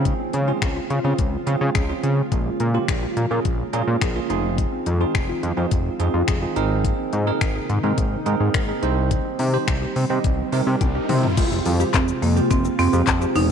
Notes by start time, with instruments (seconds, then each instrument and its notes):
Already playing: analog synth bass C#3, ambient pad C#3 F3 G#3 F4 C5, tine electric piano C4 C#4 F4 G#4
0.05 synth pluck G#3, kick, closed hi-hat
0.19 synth pluck C4
0.33 analog synth bass C#3, synth pluck C#4, closed hi-hat
0.47 tine electric piano C4 C#4 F4 G#4, synth pluck F4
0.62 analog synth bass C#2, synth pluck G#4, finger snap, kick, closed hi-hat
0.76 synth pluck F4
0.90 analog synth bass C#3, closed hi-hat
1.04 analog synth bass C#3, tine electric piano C4 C#4 F4 G#4, synth pluck C4
1.18 analog synth bass C#2, synth pluck G#3, kick, closed hi-hat
1.47 analog synth bass C#3, tine electric piano C4 C#4 F4 G#4, closed hi-hat
1.61 analog synth bass C#3, synth pluck F4
1.75 analog synth bass C#2, synth pluck G#4, finger snap, kick, closed hi-hat
1.89 tine electric piano C4 C#4 F4 G#4, synth pluck F4
2.03 analog synth bass C#3, synth pluck C#4, closed hi-hat
2.32 analog synth bass A#1, synth pluck G#3, tine electric piano A#3 C#4 F4 G#4, ambient pad A#3, kick, closed hi-hat
2.46 synth pluck A#3
2.60 analog synth bass A#2, synth pluck C#4, closed hi-hat
2.74 tine electric piano A#3 C#4 F4 G4, synth pluck F4
2.88 analog synth bass A#1, synth pluck G#4, finger snap, kick, closed hi-hat
3.03 synth pluck F4
3.17 analog synth bass A#2, closed hi-hat
3.31 analog synth bass A#2, tine electric piano A#3 C#4 F4 G#4, synth pluck A#3
3.45 analog synth bass A#1, synth pluck G#3, kick, closed hi-hat
3.73 analog synth bass A#2, tine electric piano A#3 C#4 F4 G#4, closed hi-hat
3.87 analog synth bass A#2, synth pluck F4
4.01 analog synth bass A#1, synth pluck G#4, finger snap, kick, closed hi-hat
4.15 tine electric piano A#3 C#4 F4 G#4, synth pluck F4
4.30 analog synth bass F1, ambient pad D#3 C4, tine electric piano C4 D#4 F4 G#4, synth pluck D#4, closed hi-hat
4.58 synth pluck G#3, kick, closed hi-hat
4.72 synth pluck C4
4.86 analog synth bass F2, synth pluck D#4, closed hi-hat
5.00 tine electric piano C4 D#4 F4 G#4, synth pluck F4
5.15 analog synth bass F1, synth pluck G#4, finger snap, kick, closed hi-hat
5.29 synth pluck F4
5.43 analog synth bass F2, closed hi-hat
5.57 analog synth bass F2, tine electric piano C4 D#4 F4 G#4, synth pluck C4
5.71 analog synth bass F1, synth pluck G#3, kick, closed hi-hat
5.99 analog synth bass F2, tine electric piano C4 D#4 F4 G#4, closed hi-hat
6.14 analog synth bass F2, synth pluck F4
6.28 analog synth bass F1, synth pluck G#4, finger snap, kick, closed hi-hat
6.42 tine electric piano C4 D#4 F4 G#4, synth pluck F4
6.56 analog synth bass G#1, ambient pad C3 A#3 D#4, tine electric piano C4 D#4 G#4 A#4, synth pluck D#4, closed hi-hat
6.84 synth pluck A#3, kick, closed hi-hat
6.99 synth pluck C4
7.13 analog synth bass G#2, synth pluck D#4, closed hi-hat
7.27 tine electric piano C4 D#4 G#4 A#4, synth pluck G#4
7.41 analog synth bass G#1, synth pluck A#4, finger snap, kick, closed hi-hat
7.55 synth pluck G#4
7.69 analog synth bass G#2, closed hi-hat
7.83 analog synth bass G#2, tine electric piano C4 D#4 G#4 A#4, synth pluck C4
7.98 analog synth bass G#1, synth pluck A#3, kick, closed hi-hat
8.26 analog synth bass G#2, tine electric piano C4 D#4 G#4 A#4, closed hi-hat
8.40 analog synth bass G#2, synth pluck G#4
8.54 analog synth bass G#1, synth pluck A#4, finger snap, kick, closed hi-hat
8.68 tine electric piano C4 D#4 G#4 A#4, synth pluck G#4
8.82 analog synth bass C2, ambient pad G3 C4, tine electric piano C4 D#4 G4 C5, synth pluck D#4, closed hi-hat
9.11 synth pluck G3, kick, closed hi-hat, riser
9.25 synth pluck C4
9.39 analog synth bass C3, synth pluck D#4, open hi-hat
9.53 tine electric piano C4 D#4 G4 C5, synth pluck G4
9.68 analog synth bass C2, synth pluck G5, finger snap, kick, closed hi-hat
9.82 synth pluck G4
9.96 analog synth bass C3, open hi-hat
10.10 analog synth bass C3, tine electric piano C4 D#4 G4 D#5, synth pluck C4
10.24 analog synth bass C2, synth pluck G3, kick, closed hi-hat
10.52 analog synth bass C3, tine electric piano C4 D#4 G4 A#4, open hi-hat
10.67 analog synth bass C3, synth pluck G4
10.81 analog synth bass C2, synth pluck G5, kick, closed hi-hat, high tom
10.95 tine electric piano C4 D#4 G4 A#4, synth pluck G4
11.09 analog synth bass C3, synth pluck D#4, mid tom, open hi-hat
11.23 floor tom
11.37 analog synth bass F1, ambient pad C3 F3 G#3 F4, synth pluck G#3, tine electric piano C4 F4 G4 G#4 C5, kick, closed hi-hat, crash, shaker
11.52 analog synth bass F1, synth pluck C4, shaker
11.66 analog synth bass F2, synth pluck F4, open hi-hat, shaker
11.80 tine electric piano C4 F4 G4 G#4 C5, synth pluck G4, shaker
11.94 analog synth bass F1, marimba C4, synth pluck G#4, kick, clap, closed hi-hat, shaker
12.08 shaker
12.22 analog synth bass F2, marimba A#3, open hi-hat, shaker
12.36 tine electric piano C4 F4 G4 G#4 C5, shaker
12.51 analog synth bass F1, synth pluck G#3, marimba C4, kick, closed hi-hat, shaker
12.65 synth pluck C4, shaker
12.79 analog synth bass F2, marimba C4, tine electric piano C4 F4 G4 G#4 C5, open hi-hat, shaker
12.93 analog synth bass F2, synth pluck G4, shaker
13.07 analog synth bass F2, kick, clap, closed hi-hat, shaker
13.21 tine electric piano C4 F4 G4 G#4 C5, synth pluck G4, shaker
13.36 analog synth bass E1, marimba D#4, synth pluck F4, open hi-hat, shaker